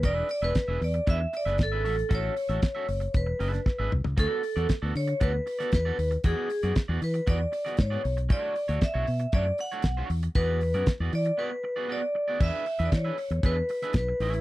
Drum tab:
CC |----------------|----------------|----------------|----------------|
HH |x-oxx-oxx-oxx-ox|x-oxx-oxx-ox----|x-oxx-oxx-oxx-ox|x-oxx-oxx-oxx-ox|
SD |----o------oo---|----o------oo---|----o------oo---|----o------oo---|
T2 |----------------|--------------o-|----------------|----------------|
FT |----------------|---------------o|----------------|----------------|
BD |o---o---o---o---|o---o---o---o---|o---o---o---o---|o---o---o---o---|

CC |----------------|----------------|x---------------|
HH |x-oxx-oxx-oxx-ox|x-oxx-ox--------|--oxx-oxx-oxx-ox|
SD |----o-------o---|----o-----------|----o------oo---|
T2 |----------------|----------------|----------------|
FT |----------------|----------------|----------------|
BD |o---o---o---o---|o---o-----------|o---o---o---o---|